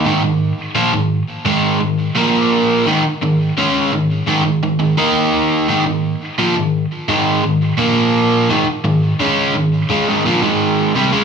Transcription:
\new Staff \with { instrumentName = "Overdriven electric guitar" } { \clef bass \time 4/4 \key bes \dorian \tempo 4 = 85 <aes, ees>16 <aes, ees>8 r16 <bes, f>16 <aes, ees>8 r16 <aes, ees aes>8 <aes, ees>8 <bes, f bes>4 | <aes, ees>16 r16 <aes, ees>8 <des aes des'>8 <aes, ees>8 <aes, ees>16 <aes, ees>16 <aes, ees>16 <aes, ees>16 <ees bes ees'>4 | <aes, ees>16 <aes, ees>8 r16 <bes, f>16 <aes, ees>8 r16 <aes, ees aes>8 <aes, ees>8 <bes, f bes>4 | <aes, ees>16 r16 <aes, ees>8 <des aes des'>8 <aes, ees>8 <des aes>16 <aes, ees>16 <bes, f>16 <aes, ees aes>8. <c g>16 <des aes>16 | }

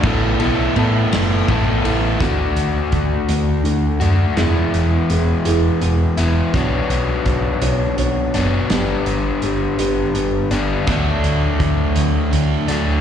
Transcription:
<<
  \new Staff \with { instrumentName = "Steel-string acoustic guitar" } { \time 6/8 \key d \lydian \tempo 4. = 55 r2. | <d a d' fis'>8 r8 <d a d' fis'>8 <d a d' fis'>8 <d a d' fis'>8 r8 | <b e' gis' b'>8 r8 <b e' gis' b'>8 <b e' gis' b'>8 <b e' gis' b'>8 r8 | <b d' fis' cis''>8 r8 <b d' fis' cis''>8 <b d' fis' cis''>8 <b d' fis' cis''>8 r8 |
<b d' g' b'>8 r8 <b d' g' b'>8 <b d' g' b'>8 <b d' g' b'>8 r8 | r2. | }
  \new Staff \with { instrumentName = "Distorted electric guitar" } { \time 6/8 \key d \lydian <a b e' a'>8 <b e' a'>8 <a b e' a'>8 <b e' a'>8 <a b e' a'>8 <b e' a'>8 | r2. | r2. | r2. |
r2. | <d a d'>2 <d a d'>4 | }
  \new Staff \with { instrumentName = "Overdriven electric guitar" } { \time 6/8 \key d \lydian <a b e' a'>8 <a b e' a'>8 <a b e' a'>4 <a b e' a'>8 <b e' a'>8 | <d a d' fis'>2~ <d a d' fis'>8 <d a d' fis'>8 | <e gis b e'>2~ <e gis b e'>8 <e gis b e'>8 | <b, fis b d'>2~ <b, fis b d'>8 <b, fis b d'>8 |
<g, d g b d'>2~ <g, d g b d'>8 <g, d g b d'>8 | <d fis a d'>2~ <d fis a d'>8 <d fis a d'>8 | }
  \new Staff \with { instrumentName = "Fingered electric bass" } { \clef bass \time 6/8 \key d \lydian a,,8 b,,8 a,8 fis,,8 a,,8 a,,8 | d,8 d,8 d,8 d,8 d,8 fis,8 | e,,8 e,,8 e,,8 e,,8 e,,8 e,,8 | b,,8 b,,8 b,,8 b,,8 b,,8 fis,,8 |
g,,8 g,,8 g,,8 g,,8 g,,8 g,,8 | d,8 d,8 d,8 d,8 d,8 d,8 | }
  \new DrumStaff \with { instrumentName = "Drums" } \drummode { \time 6/8 <bd cymr>8 cymr8 cymr8 <cymr sn>8 <bd cymr>8 cymr8 | <hh bd>8 hh8 <hh bd>8 hh8 hh8 hh8 | <hh sn>8 hh8 hh8 hh8 hh8 hh8 | <hh bd>8 hh8 <hh bd>8 hh8 hh8 hh8 |
<hh sn>8 hh8 hh8 hh8 hh8 hh8 | <hh bd>8 hh8 <hh bd>8 hh8 hh8 hh8 | }
>>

